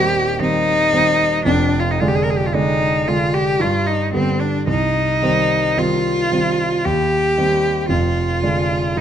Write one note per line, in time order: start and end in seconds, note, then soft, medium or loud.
0.00 1.48 D#1 medium
0.00 1.48 D#2 medium
0.00 0.39 D#3 medium
0.00 0.40 G3 medium
0.00 0.41 C4 medium
0.00 0.40 G4 loud
0.39 0.88 D#3 soft
0.39 0.89 G3 soft
0.39 0.89 C4 medium
0.39 1.45 D#4 loud
0.93 1.42 D#3 soft
0.93 1.42 G3 soft
0.93 1.43 C4 medium
1.45 1.98 F1 medium
1.45 1.98 F2 medium
1.45 1.81 D4 medium
1.79 1.92 F4 medium
1.91 2.02 D#4 medium
2.00 2.50 D3 medium
2.00 2.50 G#3 medium
2.00 2.51 D4 medium
2.00 2.10 F4 medium
2.08 2.17 G4 medium
2.15 2.25 G#4 medium
2.24 2.32 A#4 medium
2.30 2.39 G#4 medium
2.38 2.47 G4 medium
2.46 2.56 F4 medium
2.54 3.03 D3 medium
2.54 3.03 G#3 medium
2.54 3.03 D4 medium
2.54 3.10 D#4 medium
3.07 3.56 D3 soft
3.07 3.57 G#3 soft
3.07 3.57 D4 soft
3.07 3.36 F4 medium
3.34 3.63 G4 medium
3.60 4.12 G2 medium
3.60 3.88 F4 medium
3.87 4.13 D#4 medium
4.14 4.64 D3 medium
4.14 4.64 G3 soft
4.14 4.64 B3 medium
4.14 4.41 C4 medium
4.40 4.67 D4 medium
4.67 5.20 C2 medium
4.67 5.80 D#4 medium
5.22 5.72 D#3 soft
5.22 5.73 G3 medium
5.22 5.73 C4 medium
5.77 6.27 D#3 soft
5.77 6.27 G3 soft
5.77 6.27 C4 soft
5.77 6.86 F4 medium
6.32 6.80 D#3 soft
6.32 6.81 G3 soft
6.32 6.81 C4 soft
6.85 7.36 D#2 medium
6.85 7.89 G4 medium
7.38 7.86 D#3 soft
7.38 7.86 G3 soft
7.38 7.86 C4 soft
7.89 8.41 F1 soft
7.89 8.41 F2 medium
7.89 8.99 F4 medium
8.42 8.93 D3 soft
8.42 8.93 G#3 soft
8.42 8.93 D4 soft
8.96 9.01 G2 medium
8.96 9.01 D#4 medium